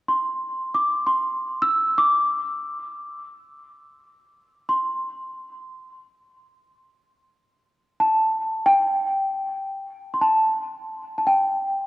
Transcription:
0.08 C6
0.74 D6
1.07 C6
1.62 E6
1.98 D6
4.69 C6
8.00 A5
8.66 G5
10.14 C6
10.21 A5
11.18 A5
11.27 G5

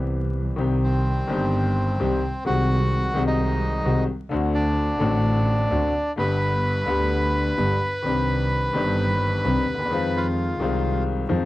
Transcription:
Already playing: C2 C3 E3 B3 C4 G4
0.56 C2 C3 D#3 G3 C4 G4
0.84 C4
1.27 G1 G2 D#3 G3 C4
1.31 G4
2.00 C2 C3 D#3 G3 C4 G4
2.45 C2 C3 D#3 G#3 C4 F#4
3.14 C2 C3 D#3 G#3 C4
3.18 F#4
3.27 D#4
3.84 C2 C3 D#3 G#3 C4 F#4
4.30 D2 D3 A3 C4 F#4
4.54 D4
4.99 A1 A2 D3 A3 C4
5.03 F#4
5.71 D2 D3 A3 C4 F#4
6.16 G1 G2 D3 G3 B3 G4 B4
6.87 D2 D3 G3 B3 G4
7.57 G1 G2 D3 G3 B3 G4
8.02 C2 C3 D#3 C4 D4
8.07 G4
8.73 G1 G2 D#3 C4 D4 G4
9.44 C2 C3 D#3 C4 D4 G4
9.68 D#2
9.74 D2
9.79 D#2
9.85 E2
9.90 F2 D#3 F3 G#3 C4
9.94 F4
10.17 F4
10.60 C2 C3 D#3 G#3 C4 F4
11.29 F2 D#3 F3 G#3 C4 F4

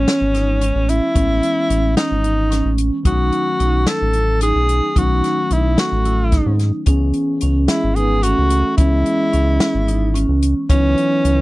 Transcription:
Already playing: E3 G#3 B3 C#4
0.08 snare, closed hi-hat
0.21 G#1
0.34 D#4, snare, closed hi-hat
0.61 C#4, closed hi-hat
0.75 A1
0.89 E4, closed hi-hat
1.14 A1 E3 G#3 B3 C#4, kick, closed hi-hat
1.43 closed hi-hat
1.69 A1 C#4, closed hi-hat
1.97 D#4, snare, closed hi-hat
2.11 G#1
2.24 D#4, closed hi-hat
2.51 C#4, snare, closed hi-hat
2.65 A1
2.78 closed hi-hat
3.03 B1 D#3 F#3 A3 D#4 F#4, kick, closed hi-hat
3.07 C#4
3.32 closed hi-hat
3.59 B1 D#4, closed hi-hat
3.87 A4, snare, closed hi-hat
4.02 A1
4.13 E4, closed hi-hat
4.41 D#4 G#4, closed hi-hat
4.55 B1
4.69 closed hi-hat
4.96 B1 D#3 F#3 A3 C#4 D#4 F#4, kick, closed hi-hat
5.24 snare, closed hi-hat
5.51 B1 D#4 E4, closed hi-hat
5.78 A3 F#4, snare, closed hi-hat
5.92 A1
6.05 E4, closed hi-hat
6.32 D#4, kick, snare, closed hi-hat
6.46 G#2
6.59 snare, closed hi-hat
6.86 C#2 E3 B3 C#4 G#4, kick, closed hi-hat
7.14 closed hi-hat
7.41 C#2 C#4, closed hi-hat
7.68 G#3 E4, snare, closed hi-hat
7.84 G#1
7.95 B3 D#4 G#4, closed hi-hat
8.22 A3 C#4 F#4, closed hi-hat
8.38 C#2
8.50 closed hi-hat
8.77 C#2 E3 G#3 B3 C#4 E4, kick, closed hi-hat
9.06 closed hi-hat
9.33 C#2 C#4, closed hi-hat
9.60 snare, closed hi-hat
9.75 G#1
9.88 D#4, closed hi-hat
10.14 C#4, closed hi-hat
10.29 C#2
10.43 closed hi-hat
10.69 C#2 E3 F#3 B3 C#4 D#4, kick, closed hi-hat
10.98 closed hi-hat
11.24 C#2 C#4, closed hi-hat

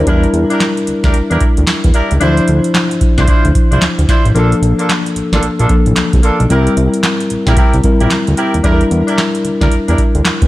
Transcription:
0.07 E2 G3 D4 E4 G4 A#4, kick, closed hi-hat
0.23 closed hi-hat
0.33 E2, closed hi-hat
0.50 D4 E4 G4 A#4, closed hi-hat
0.60 snare, clap, closed hi-hat
0.77 closed hi-hat
0.87 D2, closed hi-hat
1.04 D2 D4 E4 G4 A#4, kick, snare, closed hi-hat
1.14 E2, closed hi-hat
1.31 E2 D4 E4 G4 A#4, closed hi-hat
1.41 kick, closed hi-hat
1.57 D2, closed hi-hat
1.67 E2, snare, clap, closed hi-hat
1.84 E2, kick, closed hi-hat
1.94 D4 E4 G4 A#4, closed hi-hat
2.11 C#2, closed hi-hat
2.21 D2 E3 D4 E4 F4 C5, closed hi-hat
2.27 F3
2.37 closed hi-hat
2.48 D2, closed hi-hat
2.64 closed hi-hat
2.75 snare, clap, closed hi-hat
2.91 closed hi-hat
3.01 C2, kick, closed hi-hat
3.18 C2 D4 E4 F4 C5, kick, snare, closed hi-hat
3.28 D2 D4 E4 F4 C5, kick, closed hi-hat
3.45 D2, closed hi-hat
3.55 kick, closed hi-hat
3.72 C2 D4 E4 F4 C5, closed hi-hat
3.82 D2, snare, clap, closed hi-hat
3.99 D2, closed hi-hat
4.08 D4 E4 F4 C5, kick, snare, closed hi-hat
4.25 A1, closed hi-hat
4.34 A#1 F3 A#3 D4 F4 A4, closed hi-hat
4.52 closed hi-hat
4.62 A#1, closed hi-hat
4.79 A#3 D4 F4 A4, closed hi-hat
4.90 snare, clap, closed hi-hat
5.06 closed hi-hat
5.16 A1, closed hi-hat
5.32 A1 A#3 D4 F4 A4, snare, closed hi-hat
5.43 A#1, closed hi-hat
5.59 A#1 A#3 D4 F4 A4, closed hi-hat
5.69 F3 A#3 D4 A4, kick, closed hi-hat
5.86 A1, closed hi-hat
5.96 C2, snare, clap, closed hi-hat
6.13 C2, kick, closed hi-hat
6.23 A#3 D4 F4 A4, closed hi-hat
6.40 B1, closed hi-hat
6.50 C2 G3 C4 E4 G4 A#4, closed hi-hat
6.67 closed hi-hat
6.77 C2, closed hi-hat
6.94 closed hi-hat
7.03 snare, clap, closed hi-hat
7.20 closed hi-hat
7.30 A#1, closed hi-hat
7.47 A#1 C4 E4 G4 A#4, kick, snare, closed hi-hat
7.57 C2 C4 E4 G4 A#4, kick, closed hi-hat
7.73 C2, closed hi-hat
7.84 G3 C4 E4 A#4, kick, closed hi-hat
8.00 A#1 C4 E4 G4 A#4, closed hi-hat
8.10 D2, snare, clap, closed hi-hat
8.27 D2, closed hi-hat
8.37 C4 E4 G4 A#4, closed hi-hat
8.54 D#2, closed hi-hat
8.64 E2 G3 D4 E4 G4 A4 A#4, kick, closed hi-hat
8.73 A#4
8.81 closed hi-hat
8.91 E2, closed hi-hat
9.08 D4 E4 G4 A#4, closed hi-hat
9.18 snare, clap, closed hi-hat
9.35 closed hi-hat
9.45 D2, closed hi-hat
9.61 D2 D4 E4 G4 A#4, kick, snare, closed hi-hat
9.72 E2, closed hi-hat
9.88 E2 D4 E4 G4 A#4, closed hi-hat
9.98 kick, closed hi-hat
10.15 D2, closed hi-hat
10.25 E2, snare, clap, closed hi-hat
10.42 E2, kick, closed hi-hat

